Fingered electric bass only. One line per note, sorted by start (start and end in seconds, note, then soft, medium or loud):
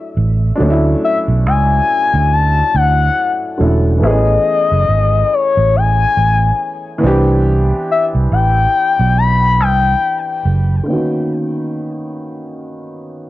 0.17 0.51 A1 medium
0.60 0.94 D2 loud
1.28 1.46 B1 medium
1.46 1.80 C#2 medium
2.14 2.61 D2 medium
2.75 3.08 D2 medium
3.60 4.03 E1 medium
4.03 4.37 A1 loud
4.72 4.85 F#1 medium
4.89 5.22 G#1 medium
5.57 6.04 A1 medium
6.17 6.51 A1 medium
7.03 7.71 C2 medium
8.15 8.28 C2 medium
8.32 8.65 A1 medium
8.99 9.60 B1 medium
9.60 9.94 C2 medium
10.45 10.79 F#1 medium